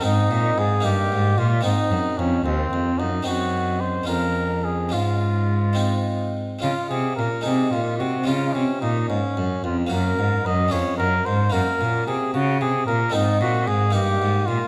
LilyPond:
<<
  \new Staff \with { instrumentName = "Trumpet" } { \time 6/8 \key des \major \tempo 4. = 74 ees'4 aes'8 g'4 f'8 | ees'4 des'8 c'4 ees'8 | ges'4 c''8 bes'4 aes'8 | f'2~ f'8 r8 |
f'8 aes'8 bes'8 aes'8 f'8 ges'8 | f'8 des'8 ees'8 des'4 f'8 | bes'4 ees''8 des''8 bes'8 c''8 | bes'4 aes'8 ges'8 aes'8 bes'8 |
ees'8 ges'8 aes'8 g'4 f'8 | }
  \new Staff \with { instrumentName = "Harpsichord" } { \time 6/8 \key des \major <aes c' ees'>4. <bes ees'>4. | <aes c' ees'>2. | <aes c' ees'>4. <aes des' f'>4. | <aes des' f'>4. <aes c' ees'>4. |
<aes des' f'>4. <aes ees'>4. | <aes des' f'>2. | <bes des' ges'>4. <aes des' aes'>4. | <bes des' ges'>2. |
<aes c' ees'>4. <bes ees'>4. | }
  \new Staff \with { instrumentName = "Harpsichord" } { \clef bass \time 6/8 \key des \major aes,8 bes,8 aes,8 g,8 aes,8 bes,8 | aes,8 ges,8 f,8 ees,8 f,8 ges,8 | ges,4. f,4. | aes,2~ aes,8 r8 |
des8 c8 bes,8 c8 bes,8 c8 | des8 c8 bes,8 aes,8 ges,8 f,8 | ges,8 aes,8 ges,8 f,8 ges,8 aes,8 | ges,8 bes,8 c8 des8 c8 bes,8 |
aes,8 bes,8 aes,8 g,8 aes,8 bes,8 | }
  \new Staff \with { instrumentName = "Cello" } { \clef bass \time 6/8 \key des \major aes,8 bes,8 aes,8 g,8 aes,8 bes,8 | aes,8 ges,8 f,8 ees,8 f,8 ges,8 | ges,4. f,4. | aes,2~ aes,8 r8 |
des8 c8 bes,8 c8 bes,8 c8 | des8 c8 bes,8 aes,8 ges,8 f,8 | ges,8 aes,8 ges,8 f,8 ges,8 aes,8 | ges,8 bes,8 c8 des8 c8 bes,8 |
aes,8 bes,8 aes,8 g,8 aes,8 bes,8 | }
>>